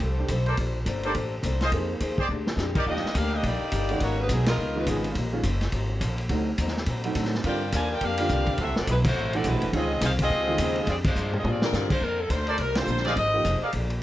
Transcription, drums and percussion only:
0.00 kick
0.28 kick, hi-hat pedal, ride
0.46 ride
0.57 kick, ride
0.86 kick, hi-hat pedal, ride
1.03 ride
1.15 kick, ride
1.43 kick, hi-hat pedal, ride
1.61 snare, ride
1.72 kick, ride
2.00 kick, hi-hat pedal, ride
2.18 kick
2.47 snare
2.58 snare, hi-hat pedal
2.75 kick, crash
2.87 kick
2.96 snare
3.06 snare
3.15 kick, hi-hat pedal, ride
3.43 kick, ride
3.72 kick, hi-hat pedal, ride
3.89 ride
4.00 kick, ride
4.29 kick, hi-hat pedal, ride
4.46 snare, ride
4.86 kick, hi-hat pedal, ride
5.04 ride
5.15 kick, ride
5.43 kick, hi-hat pedal, ride
5.61 snare, ride
5.72 kick, ride
6.01 kick, hi-hat pedal, ride
6.18 ride
6.29 kick, ride
6.58 kick, hi-hat pedal, ride
6.68 snare
6.77 snare
6.86 kick, ride
7.04 ride
7.15 kick, hi-hat pedal, ride
7.25 snare
7.35 snare
7.44 kick, ride
7.72 kick, hi-hat pedal, ride
8.01 kick, ride
8.17 ride
8.28 kick, hi-hat pedal
8.46 kick, ride
8.58 kick, ride
8.76 snare
8.87 kick, hi-hat pedal, ride
9.05 kick, crash
9.33 ride
9.44 kick, hi-hat pedal, ride
9.62 ride
9.73 kick, ride
10.01 kick, snare, hi-hat pedal, ride
10.19 kick, ride
10.30 kick
10.58 kick, hi-hat pedal, ride
10.76 ride
10.87 kick, ride
11.04 kick, crash
11.16 hi-hat pedal
11.33 mid tom
11.44 mid tom
11.62 snare
11.73 snare, hi-hat pedal
11.90 kick, crash
12.01 kick
12.30 kick, hi-hat pedal, ride
12.47 ride
12.58 kick, ride
12.75 snare, ride
12.87 hi-hat pedal
12.97 snare
13.05 snare, ride
13.16 kick, ride
13.44 kick, hi-hat pedal, ride
13.73 kick, ride
13.90 ride

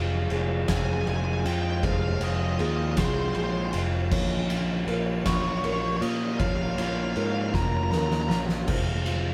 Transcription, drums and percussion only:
0.30 ride
0.68 kick, snare, ride
1.07 ride
1.46 ride
1.83 kick, ride
2.21 ride
2.59 ride
2.97 kick, snare, ride
3.35 ride
3.73 ride
4.11 kick, crash
4.50 ride
4.88 ride
5.26 kick, snare, ride
5.64 ride
6.02 ride
6.40 kick, ride
6.78 ride
7.16 ride
7.54 kick, snare
7.92 snare
8.11 snare
8.30 snare
8.49 snare
8.68 kick, crash
9.06 ride

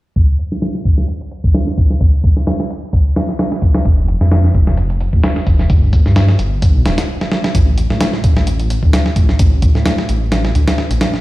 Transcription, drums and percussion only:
0.16 kick, closed hi-hat
0.39 closed hi-hat
0.52 snare
0.62 snare, closed hi-hat
0.75 snare
0.85 kick, closed hi-hat
0.98 snare
1.08 closed hi-hat
1.21 closed hi-hat
1.31 closed hi-hat
1.44 kick
1.54 snare, closed hi-hat
1.67 snare
1.78 kick, closed hi-hat
1.90 snare
2.01 kick, closed hi-hat
2.24 kick, closed hi-hat
2.37 snare
2.47 snare, closed hi-hat
2.60 snare
2.70 closed hi-hat
2.93 kick, closed hi-hat
3.16 snare, closed hi-hat
3.29 snare
3.39 snare, closed hi-hat
3.52 snare
3.62 kick, closed hi-hat
3.75 snare, closed hi-hat
3.85 kick, closed hi-hat
4.08 closed hi-hat
4.21 snare
4.32 snare, closed hi-hat
4.44 snare
4.54 kick, closed hi-hat
4.67 snare
4.77 closed hi-hat
4.90 closed hi-hat
5.00 closed hi-hat
5.13 kick
5.24 snare, closed hi-hat
5.36 snare
5.47 kick, closed hi-hat
5.59 snare
5.70 kick, closed hi-hat
5.93 kick, closed hi-hat
6.06 snare
6.16 snare, closed hi-hat
6.29 snare
6.39 closed hi-hat
6.62 kick, closed hi-hat
6.86 snare, closed hi-hat
6.98 snare, closed hi-hat
7.21 snare
7.32 snare
7.44 snare
7.55 kick, closed hi-hat
7.78 closed hi-hat
7.90 snare
8.01 snare, closed hi-hat
8.13 snare
8.24 kick, closed hi-hat
8.37 snare
8.47 closed hi-hat
8.60 closed hi-hat
8.70 closed hi-hat
8.83 kick
8.93 snare, closed hi-hat
9.06 snare
9.16 kick, closed hi-hat
9.29 snare
9.39 kick, closed hi-hat
9.62 kick, closed hi-hat
9.75 snare
9.86 snare, closed hi-hat
9.98 snare
10.09 closed hi-hat
10.32 snare, closed hi-hat
10.45 snare
10.55 closed hi-hat
10.68 snare, closed hi-hat
10.78 snare
10.91 closed hi-hat
11.01 snare, closed hi-hat
11.14 snare

